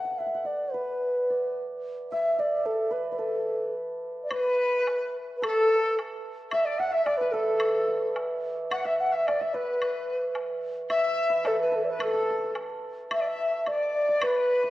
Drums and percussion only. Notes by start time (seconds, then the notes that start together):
4.31 high woodblock
4.87 high woodblock, low woodblock
5.43 high woodblock
5.99 high woodblock, low woodblock
6.51 high woodblock
7.06 high woodblock, low woodblock
7.60 high woodblock
8.16 high woodblock, low woodblock
8.71 high woodblock
9.28 high woodblock, low woodblock
9.81 high woodblock
10.35 high woodblock, low woodblock
10.90 high woodblock
11.45 high woodblock, low woodblock
12.00 high woodblock
12.55 high woodblock, low woodblock
13.11 high woodblock
13.66 high woodblock
14.22 high woodblock